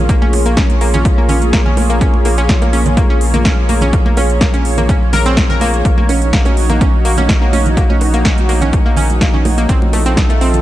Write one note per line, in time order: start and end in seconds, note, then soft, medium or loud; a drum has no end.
0.00 5.83 A#1 medium
0.00 5.81 A#3 medium
0.00 5.81 F4 medium
0.00 5.81 G#4 medium
0.00 9.65 C#5 medium
0.09 0.14 A#3 medium
0.09 kick loud
0.09 closed hi-hat medium
0.22 0.26 C#4 medium
0.22 high conga loud
0.33 open hi-hat loud
0.33 high bongo medium
0.46 0.50 A#3 medium
0.46 closed hi-hat medium
0.57 0.62 C#4 medium
0.57 kick loud
0.57 snare loud
0.57 closed hi-hat medium
0.70 closed hi-hat soft
0.70 high conga medium
0.81 0.86 A#3 medium
0.81 open hi-hat loud
0.94 0.98 C#4 medium
0.94 closed hi-hat medium
0.94 low conga loud
1.05 kick loud
1.05 closed hi-hat medium
1.05 high conga medium
1.18 1.22 A#3 medium
1.29 1.34 C#4 medium
1.29 open hi-hat loud
1.29 low conga medium
1.42 closed hi-hat medium
1.42 high conga medium
1.53 1.58 A#3 medium
1.53 kick loud
1.53 snare loud
1.53 closed hi-hat medium
1.66 1.70 C#4 medium
1.66 low conga medium
1.77 open hi-hat loud
1.77 high bongo medium
1.77 high conga medium
1.90 1.94 A#3 medium
1.90 closed hi-hat medium
2.01 2.06 C#4 medium
2.01 kick loud
2.01 closed hi-hat medium
2.14 high conga medium
2.25 2.30 A#3 medium
2.25 open hi-hat loud
2.25 high bongo medium
2.38 2.42 C#4 medium
2.38 closed hi-hat medium
2.49 kick loud
2.49 snare loud
2.49 closed hi-hat medium
2.62 2.66 A#3 medium
2.62 closed hi-hat soft
2.62 high bongo medium
2.62 high conga medium
2.73 2.78 C#4 medium
2.73 open hi-hat loud
2.86 closed hi-hat soft
2.86 low conga loud
2.97 3.02 A#3 medium
2.97 kick loud
2.97 closed hi-hat medium
2.97 high conga loud
3.10 3.14 C#4 medium
3.21 open hi-hat loud
3.34 3.38 A#3 medium
3.34 closed hi-hat medium
3.34 high conga medium
3.34 low conga medium
3.45 3.50 C#4 medium
3.45 kick loud
3.45 snare loud
3.45 closed hi-hat medium
3.69 3.74 A#3 medium
3.69 open hi-hat loud
3.69 high conga medium
3.81 3.86 C#4 medium
3.81 closed hi-hat medium
3.81 low conga medium
3.93 kick loud
3.93 closed hi-hat medium
4.06 4.10 A#3 medium
4.06 high conga medium
4.17 4.22 C#4 medium
4.17 open hi-hat loud
4.17 high bongo medium
4.30 closed hi-hat soft
4.41 4.46 A#3 medium
4.41 kick loud
4.41 snare loud
4.41 closed hi-hat medium
4.54 4.58 C#4 medium
4.54 closed hi-hat soft
4.54 high conga medium
4.65 open hi-hat loud
4.78 4.82 A#3 medium
4.78 closed hi-hat soft
4.78 low conga medium
4.89 4.94 C#4 medium
4.89 kick loud
4.89 closed hi-hat medium
4.89 high conga medium
5.13 5.18 A#4 loud
5.13 snare medium
5.13 open hi-hat loud
5.13 low conga medium
5.26 5.30 C4 loud
5.26 closed hi-hat medium
5.26 high conga medium
5.37 kick loud
5.37 snare loud
5.37 closed hi-hat medium
5.50 5.52 A#4 loud
5.50 low conga medium
5.60 5.66 A#3 loud
5.60 open hi-hat loud
5.60 high bongo medium
5.60 high conga medium
5.74 closed hi-hat soft
5.85 9.67 A#1 medium
5.85 10.62 D#4 medium
5.85 9.65 F#4 medium
5.85 kick loud
5.85 closed hi-hat medium
5.98 6.02 A#3 medium
5.98 high conga medium
6.09 6.14 C#4 medium
6.09 open hi-hat loud
6.09 high bongo medium
6.22 closed hi-hat medium
6.33 6.38 A#3 medium
6.33 kick loud
6.33 snare loud
6.33 closed hi-hat medium
6.45 6.50 C#4 medium
6.45 closed hi-hat soft
6.45 high bongo medium
6.45 high conga medium
6.57 open hi-hat medium
6.69 6.74 A#3 medium
6.69 closed hi-hat soft
6.69 low conga medium
6.81 6.86 C#4 medium
6.81 kick loud
6.81 closed hi-hat medium
6.81 high conga medium
7.05 7.10 A#3 medium
7.05 open hi-hat loud
7.17 7.22 C#4 medium
7.17 closed hi-hat medium
7.17 high conga medium
7.17 low conga medium
7.29 kick loud
7.29 snare loud
7.29 closed hi-hat medium
7.42 7.46 A#3 medium
7.53 7.58 C#4 medium
7.53 open hi-hat medium
7.53 high conga medium
7.66 closed hi-hat soft
7.66 low conga medium
7.77 7.82 A#3 medium
7.77 kick loud
7.77 closed hi-hat medium
7.90 7.94 C#4 medium
7.90 high conga medium
8.01 open hi-hat loud
8.01 high bongo medium
8.14 8.18 A#3 medium
8.14 closed hi-hat medium
8.25 8.30 C#4 medium
8.25 kick loud
8.25 snare loud
8.25 closed hi-hat medium
8.38 closed hi-hat soft
8.38 high conga medium
8.49 8.54 A#3 medium
8.49 open hi-hat medium
8.61 8.66 C#4 medium
8.61 closed hi-hat medium
8.61 low conga medium
8.73 kick loud
8.73 closed hi-hat medium
8.73 high conga medium
8.86 8.90 A#3 medium
8.97 9.02 C#4 medium
8.97 open hi-hat loud
8.97 low conga medium
9.10 closed hi-hat medium
9.10 high conga medium
9.21 9.26 A#3 medium
9.21 kick loud
9.21 snare loud
9.21 closed hi-hat medium
9.34 9.38 C#4 medium
9.34 low conga medium
9.45 open hi-hat medium
9.45 high bongo medium
9.45 high conga loud
9.58 9.62 A#3 medium
9.58 closed hi-hat medium
9.69 10.62 A#1 medium
9.69 9.74 C4 medium
9.69 10.62 F4 medium
9.69 10.62 A4 medium
9.69 kick loud
9.69 closed hi-hat medium
9.82 high conga medium
9.93 9.98 A3 medium
9.93 open hi-hat loud
9.93 high bongo medium
10.06 10.10 C4 medium
10.06 closed hi-hat medium
10.17 kick loud
10.17 snare loud
10.17 closed hi-hat medium
10.29 10.34 A3 medium
10.29 closed hi-hat soft
10.29 high bongo medium
10.29 high conga medium
10.41 10.46 C4 medium
10.41 open hi-hat medium
10.54 closed hi-hat medium
10.54 low conga medium